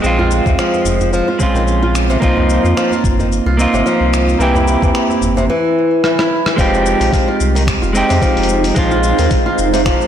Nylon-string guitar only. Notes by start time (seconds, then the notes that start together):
0.19 F4
0.46 C3
0.59 F3
1.13 F3
1.28 F4
1.55 D#3
1.83 F4
2.10 C3
2.22 F3
2.77 F3
2.92 F4
3.19 D#3
3.46 F4
3.74 C3
3.86 F3
4.40 E3
4.55 E4
4.83 E3
5.10 E4
5.37 C3
5.50 E3
6.04 E3
6.19 E4
6.46 E3
6.58 F3
7.13 F3
7.28 F4
7.55 D#3
7.82 F4
8.09 C3
8.22 F3
8.76 F3
8.91 F4
9.19 D#3
9.46 F4
9.73 C3
9.85 F3